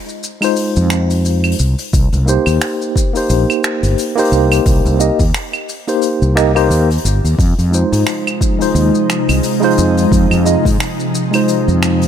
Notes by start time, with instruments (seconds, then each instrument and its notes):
0.09 shaker
0.23 shaker
0.41 tine electric piano G#3 D#4 F4 C5, open hi-hat, claves, shaker
0.56 open hi-hat, shaker
0.76 fretless electric bass F2, shaker
0.90 finger snap, shaker
1.10 open hi-hat, shaker
1.25 open hi-hat, shaker
1.44 open hi-hat, claves, shaker
1.51 open hi-hat
1.59 fretless electric bass C2, shaker
1.78 open hi-hat, shaker
1.93 fretless electric bass C2, kick, open hi-hat, shaker
2.12 fretless electric bass C2, open hi-hat, shaker
2.26 tine electric piano A#3 D#4 G4 C5, shaker
2.46 fretless electric bass D#2, open hi-hat, claves, shaker
2.61 finger snap, open hi-hat, shaker
2.82 shaker
2.96 kick, shaker
3.13 tine electric piano A#3 D#4 G4, open hi-hat, shaker
3.17 tine electric piano C5
3.30 fretless electric bass A#1, open hi-hat, shaker
3.50 claves, shaker
3.64 finger snap, shaker
3.83 fretless electric bass G1, open hi-hat, shaker
3.98 open hi-hat, shaker
4.16 tine electric piano A#3 D#4 G4 C5, open hi-hat, shaker
4.25 open hi-hat
4.32 fretless electric bass C2, shaker
4.51 open hi-hat, claves, shaker
4.66 fretless electric bass C2, kick, open hi-hat, shaker
4.85 fretless electric bass C2, open hi-hat, shaker
4.99 tine electric piano A#3 D#4 G4 D#5, shaker
5.19 fretless electric bass D#2, kick, open hi-hat, shaker
5.34 finger snap, open hi-hat, shaker
5.53 claves, shaker
5.69 open hi-hat, shaker
5.87 tine electric piano A#3 D#4 G4 C5, open hi-hat, shaker
6.02 open hi-hat, shaker
6.22 fretless electric bass C2, shaker
6.36 tine electric piano A#3 D#4 G4 D#5, finger snap, shaker
6.55 tine electric piano A#3 D#4 G4 C5, open hi-hat, claves, shaker
6.70 fretless electric bass D#2, open hi-hat, shaker
6.90 open hi-hat, shaker
6.98 open hi-hat
7.05 fretless electric bass G1, shaker
7.24 fretless electric bass D#2, open hi-hat, shaker
7.39 fretless electric bass F2, ambient pad C3 F3 G#3 D#4, kick, open hi-hat, shaker
7.58 fretless electric bass F2, open hi-hat, shaker
7.71 tine electric piano G#3 D#4 F4, shaker
7.75 tine electric piano C5
7.92 fretless electric bass G#2, open hi-hat, shaker
8.07 finger snap, open hi-hat, shaker
8.27 claves, shaker
8.41 kick, shaker
8.58 tine electric piano G#3 D#4 F4 C5, open hi-hat, shaker
8.75 fretless electric bass D#2, open hi-hat, shaker
8.95 shaker
9.10 finger snap, shaker
9.29 fretless electric bass C2, open hi-hat, claves, shaker
9.43 open hi-hat, shaker
9.60 tine electric piano G#3 D#4 F4, open hi-hat, shaker
9.64 tine electric piano C5
9.71 open hi-hat
9.78 fretless electric bass F2, shaker
9.97 open hi-hat, shaker
10.12 fretless electric bass F2, kick, open hi-hat, shaker
10.31 fretless electric bass F2, open hi-hat, claves, shaker
10.44 tine electric piano G#3 D#4 F4 D#5, shaker
10.65 fretless electric bass G#2, kick, open hi-hat, shaker
10.80 finger snap, open hi-hat, shaker
11.00 shaker
11.15 shaker
11.31 tine electric piano G#3 D#4 F4 C5, open hi-hat, claves, shaker
11.48 open hi-hat, shaker
11.68 fretless electric bass F2, shaker
11.83 finger snap, shaker
12.02 open hi-hat, shaker